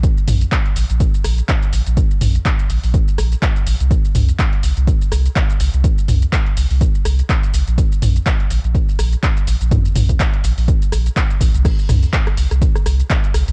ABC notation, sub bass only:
X:1
M:4/4
L:1/16
Q:"Swing 16ths" 1/4=124
K:Bbdor
V:1 name="Sub bass" clef=bass
z2 B,,, z3 B,,, B,,, z2 B,,, z3 B,,, B,,, | z2 B,,, z3 B,,, B,,, z2 B,,, z3 B,,, C,, | z2 C,, z3 C,, C,, z2 C,, z3 C,, C,, | z2 C,, z3 C,, C,, z2 C,, z3 C,, B,,, |
z2 B,,, z3 B,,, B,,, z2 B,,, z3 B,,, B,,, | z2 B,,, z3 B,,, B,,, z2 B,,, z3 B,,, C,, | z2 C,, z3 C,, C,, z2 C,, z3 C,, C,, |]